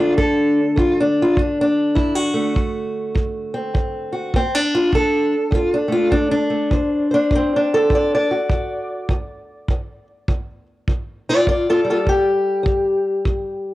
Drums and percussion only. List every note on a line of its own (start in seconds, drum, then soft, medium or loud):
0.18 kick medium
0.77 kick medium
1.37 kick medium
1.96 kick medium
2.56 kick medium
3.16 kick medium
3.75 kick medium
4.34 kick medium
4.93 kick medium
5.52 kick medium
6.12 kick medium
6.71 kick medium
7.31 kick medium
7.90 kick medium
8.49 kick medium
9.09 kick medium
9.68 kick medium
10.28 kick medium
10.88 kick medium
11.47 kick medium
12.07 kick medium
12.66 kick medium
13.25 kick medium